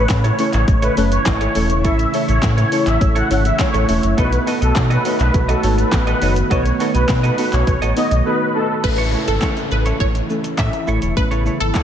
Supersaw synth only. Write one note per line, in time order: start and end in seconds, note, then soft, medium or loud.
0.25 0.36 C#5 medium
0.54 0.65 C#5 medium
0.83 0.94 B4 medium
1.12 1.24 C#5 medium
1.26 1.68 C#5 loud
1.85 1.96 E5 loud
2.28 2.40 C#5 medium
2.57 2.69 C#5 medium
2.87 2.98 E5 medium
3.16 3.28 F#5 medium
3.45 3.57 E5 medium
3.59 4.01 C#5 loud
4.18 4.30 B4 loud
4.62 4.73 A4 medium
4.91 5.02 B4 medium
5.20 5.32 B4 medium
5.50 5.61 A4 medium
5.79 5.90 B4 medium
5.93 6.34 B4 medium
6.51 6.63 C#5 loud
6.95 7.06 B4 medium
7.24 7.35 B4 medium
7.53 7.76 C#5 medium
7.96 8.08 D#5 medium
8.26 8.37 B4 medium
8.54 8.66 A4 medium